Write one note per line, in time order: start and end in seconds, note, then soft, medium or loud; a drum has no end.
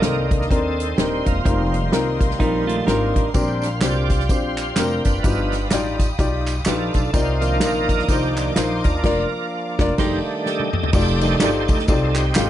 0.00 0.43 C2 medium
0.00 0.27 G2 medium
0.00 0.27 D#3 medium
0.00 0.27 A#3 soft
0.00 0.35 C4 medium
0.00 0.31 D4 medium
0.00 0.36 D4 medium
0.00 0.36 D#4 medium
0.00 0.46 A#4 medium
0.00 1.43 D5 medium
0.00 5.20 C6 medium
0.00 snare loud
0.00 closed hi-hat medium
0.04 0.50 D#4 medium
0.04 0.37 A4 medium
0.31 0.49 D#3 soft
0.31 0.49 A#3 soft
0.31 0.49 D4 soft
0.31 kick medium
0.31 closed hi-hat medium
0.41 snare soft
0.49 0.91 D#2 medium
0.49 0.83 C4 medium
0.49 1.26 C4 medium
0.49 0.83 D4 medium
0.49 1.41 D#4 medium
0.49 0.84 D#4 medium
0.49 0.98 A4 medium
0.49 0.84 A#4 medium
0.49 kick loud
0.49 closed hi-hat medium
0.80 closed hi-hat medium
0.97 1.22 D#1 medium
0.97 1.31 C4 medium
0.97 1.31 D4 medium
0.97 1.31 D#4 medium
0.97 1.26 G4 medium
0.97 1.32 A#4 medium
0.97 snare loud
0.97 closed hi-hat medium
1.25 1.42 E1 medium
1.25 1.44 A#3 medium
1.25 2.17 C4 soft
1.25 1.88 F4 medium
1.25 kick medium
1.25 closed hi-hat medium
1.44 1.85 F1 loud
1.44 3.31 D#3 medium
1.44 3.30 G3 medium
1.44 3.31 A#3 soft
1.44 1.78 C4 medium
1.44 1.78 D#4 medium
1.44 1.79 F4 medium
1.44 1.79 A#4 medium
1.44 3.32 F5 medium
1.44 kick loud
1.44 closed hi-hat medium
1.74 closed hi-hat medium
1.92 2.25 C4 medium
1.92 2.25 D#4 medium
1.92 2.26 F4 medium
1.92 2.26 A#4 medium
1.92 snare loud
1.92 closed hi-hat medium
2.21 kick medium
2.21 closed hi-hat medium
2.31 snare soft
2.39 2.80 A#1 medium
2.39 2.67 G3 medium
2.39 2.72 C4 medium
2.39 2.72 D#4 medium
2.39 2.66 D#4 medium
2.39 2.73 F4 medium
2.39 2.73 A#4 medium
2.39 kick medium
2.39 closed hi-hat medium
2.67 2.86 A3 medium
2.67 2.86 F4 medium
2.67 closed hi-hat medium
2.87 3.11 G#1 medium
2.87 3.20 C4 medium
2.87 3.32 D4 medium
2.87 3.20 D#4 medium
2.87 3.21 F4 medium
2.87 3.32 A#4 medium
2.87 3.21 A#4 medium
2.87 snare medium
2.87 closed hi-hat medium
3.16 kick medium
3.16 closed hi-hat medium
3.34 3.81 A#1 medium
3.34 4.06 A#2 medium
3.34 3.69 G3 medium
3.34 3.67 C4 medium
3.34 3.69 C4 soft
3.34 3.68 D4 medium
3.34 3.69 D4 medium
3.34 3.68 G4 medium
3.34 3.68 A#4 medium
3.34 5.22 D5 medium
3.34 7.10 G5 medium
3.34 kick loud
3.34 closed hi-hat medium
3.34 tambourine medium
3.62 3.84 F5 loud
3.62 snare soft
3.62 closed hi-hat medium
3.62 tambourine soft
3.81 4.29 C2 medium
3.81 4.15 C4 medium
3.81 4.15 D4 medium
3.81 4.29 F4 medium
3.81 4.15 G4 medium
3.81 4.29 G4 medium
3.81 4.16 C5 medium
3.81 4.32 D5 medium
3.81 snare loud
3.81 clap medium
3.81 closed hi-hat medium
3.81 tambourine loud
4.10 kick medium
4.10 closed hi-hat medium
4.10 tambourine medium
4.20 snare soft
4.29 4.70 A#1 medium
4.29 4.62 C4 medium
4.29 4.63 D4 medium
4.29 5.05 F4 medium
4.29 5.20 G4 medium
4.29 4.63 G4 medium
4.29 4.79 C5 medium
4.29 4.63 C5 medium
4.29 kick medium
4.29 closed hi-hat medium
4.29 tambourine medium
4.58 clap medium
4.58 closed hi-hat medium
4.58 tambourine medium
4.76 5.01 F1 medium
4.76 5.10 C4 medium
4.76 5.10 D4 medium
4.76 5.10 G4 medium
4.76 5.03 A#4 medium
4.76 5.11 A#4 medium
4.76 snare medium
4.76 clap loud
4.76 closed hi-hat medium
4.76 tambourine loud
5.05 5.21 F#1 medium
5.05 5.96 D4 medium
5.05 5.96 F4 medium
5.05 5.68 B4 medium
5.05 kick medium
5.05 closed hi-hat medium
5.05 tambourine medium
5.23 5.64 G1 loud
5.23 5.96 G2 medium
5.23 5.58 F3 medium
5.23 5.58 B3 soft
5.23 5.57 D#4 medium
5.23 5.58 D#4 medium
5.23 5.57 F4 medium
5.23 5.58 G4 medium
5.23 5.58 B4 medium
5.23 9.95 F5 medium
5.23 7.12 B5 medium
5.23 7.12 D#6 medium
5.23 kick loud
5.23 closed hi-hat medium
5.23 tambourine medium
5.52 snare soft
5.52 closed hi-hat medium
5.52 tambourine soft
5.71 6.12 A1 medium
5.71 6.04 D#4 medium
5.71 6.05 F4 medium
5.71 6.05 G4 medium
5.71 6.05 D5 medium
5.71 snare loud
5.71 clap medium
5.71 closed hi-hat medium
5.71 tambourine loud
5.99 kick medium
5.99 closed hi-hat medium
5.99 tambourine medium
6.18 6.59 B1 medium
6.18 6.52 D#4 medium
6.18 6.52 F4 medium
6.18 6.52 G4 medium
6.18 6.53 D5 medium
6.18 kick medium
6.18 closed hi-hat medium
6.18 tambourine medium
6.47 clap medium
6.47 closed hi-hat medium
6.47 tambourine medium
6.65 6.90 A#1 medium
6.65 7.11 D4 medium
6.65 6.99 D#4 medium
6.65 6.99 F4 medium
6.65 7.11 F4 medium
6.65 7.00 G4 medium
6.65 7.16 A4 medium
6.65 7.00 B4 medium
6.65 snare medium
6.65 clap loud
6.65 closed hi-hat medium
6.65 tambourine loud
6.94 7.11 B1 medium
6.94 kick medium
6.94 closed hi-hat medium
6.94 tambourine medium
7.11 7.60 C2 loud
7.11 7.85 C3 medium
7.11 7.47 D#4 medium
7.11 7.62 D#4 medium
7.11 7.47 F4 medium
7.11 8.05 F4 medium
7.11 7.47 A#4 medium
7.11 7.58 C5 loud
7.11 9.01 D5 medium
7.11 7.47 D5 medium
7.11 9.95 A#5 medium
7.11 10.89 D6 medium
7.11 kick loud
7.11 closed hi-hat loud
7.11 tambourine medium
7.41 8.35 D#3 medium
7.41 8.35 F3 soft
7.41 8.09 A#3 soft
7.41 7.61 D4 medium
7.41 closed hi-hat medium
7.41 tambourine soft
7.60 8.01 A#1 medium
7.60 8.37 D4 medium
7.60 7.94 D#4 medium
7.60 8.08 D#4 medium
7.60 7.94 F4 medium
7.60 7.95 A#4 medium
7.60 8.11 A#4 medium
7.60 7.95 D#5 medium
7.60 snare medium
7.60 clap loud
7.60 closed hi-hat medium
7.60 tambourine medium
7.89 kick medium
7.89 closed hi-hat medium
7.89 tambourine medium
7.99 snare soft
8.08 8.49 C2 medium
8.08 8.36 A#3 medium
8.08 9.00 D#4 medium
8.08 8.42 D#4 medium
8.08 8.42 F4 medium
8.08 8.53 G4 medium
8.08 8.42 A#4 medium
8.08 8.43 C5 medium
8.08 kick medium
8.08 closed hi-hat medium
8.08 tambourine medium
8.36 8.54 D#3 soft
8.36 8.54 F3 soft
8.36 8.54 A#3 soft
8.36 8.55 D4 soft
8.36 clap medium
8.36 closed hi-hat medium
8.36 tambourine medium
8.56 8.80 A#1 medium
8.56 8.89 D#4 medium
8.56 8.89 F4 medium
8.56 8.89 A#4 medium
8.56 8.85 C5 medium
8.56 8.90 C5 medium
8.56 snare loud
8.56 clap loud
8.56 closed hi-hat medium
8.56 tambourine loud
8.84 9.01 D#2 medium
8.84 9.03 D4 medium
8.84 9.75 F4 medium
8.84 9.47 A#4 medium
8.84 kick medium
8.84 closed hi-hat medium
8.84 tambourine medium
9.03 9.23 F1 medium
9.03 9.94 F3 soft
9.03 9.95 A#3 soft
9.03 9.23 D4 medium
9.03 9.95 D4 medium
9.03 9.23 F4 medium
9.03 9.24 A#4 loud
9.03 9.97 D5 medium
9.03 9.24 D5 medium
9.03 kick loud
9.03 snare loud
9.03 crash medium
9.79 9.92 F1 medium
9.79 9.92 D4 loud
9.79 9.93 F4 medium
9.79 9.93 A#4 medium
9.79 9.93 D5 loud
9.79 kick loud
9.79 snare loud
9.98 10.17 F1 medium
9.98 10.70 D#3 medium
9.98 10.70 G3 soft
9.98 10.71 A3 soft
9.98 10.71 D4 medium
9.98 10.17 D#4 medium
9.98 10.19 D#4 loud
9.98 10.18 G4 medium
9.98 10.18 A4 medium
9.98 10.18 C5 loud
9.98 10.18 D5 medium
9.98 10.92 F5 medium
9.98 10.93 G5 medium
9.98 10.93 A5 medium
9.98 kick medium
9.98 snare medium
9.98 crash medium
10.46 10.91 G4 medium
10.46 10.91 A4 medium
10.46 10.96 D#5 medium
10.46 snare soft
10.60 high tom medium
10.73 mid tom medium
10.83 floor tom medium
10.93 11.34 F1 loud
10.93 11.26 D#4 medium
10.93 11.27 F4 medium
10.93 11.84 G4 medium
10.93 11.27 G4 medium
10.93 11.22 A4 medium
10.93 11.27 A4 medium
10.93 11.20 D5 medium
10.93 11.27 D5 medium
10.93 kick loud
10.93 crash loud
10.93 tambourine medium
11.21 11.51 D#3 medium
11.21 11.51 G3 medium
11.21 11.51 A3 soft
11.21 11.52 D4 medium
11.21 11.87 D#4 medium
11.21 11.87 A4 medium
11.21 11.66 C5 medium
11.21 ride medium
11.21 tambourine medium
11.40 11.65 G1 medium
11.40 11.74 D#4 medium
11.40 11.74 F4 medium
11.40 11.74 G4 medium
11.40 11.74 A4 medium
11.40 11.75 D5 medium
11.40 snare loud
11.40 clap loud
11.40 ride medium
11.40 tambourine loud
11.68 11.85 D2 loud
11.68 kick medium
11.68 ride medium
11.68 tambourine medium
11.79 snare soft
11.88 12.29 C2 medium
11.88 12.17 C4 medium
11.88 12.21 D#4 medium
11.88 12.16 D#4 medium
11.88 12.21 F4 medium
11.88 12.22 G4 medium
11.88 12.06 A4 loud
11.88 12.22 A4 medium
11.88 12.22 D5 medium
11.88 kick loud
11.88 ride medium
11.88 tambourine medium
12.07 12.16 A4 medium
12.15 12.50 C4 medium
12.15 12.50 D#4 medium
12.15 12.50 G4 medium
12.15 clap medium
12.15 ride medium
12.15 tambourine medium
12.35 12.50 G#1 medium
12.35 12.50 D#4 medium
12.35 12.50 F4 medium
12.35 12.50 G4 medium
12.35 12.50 A4 medium
12.35 12.50 F5 medium
12.35 snare loud
12.35 clap loud
12.35 ride medium
12.35 tambourine loud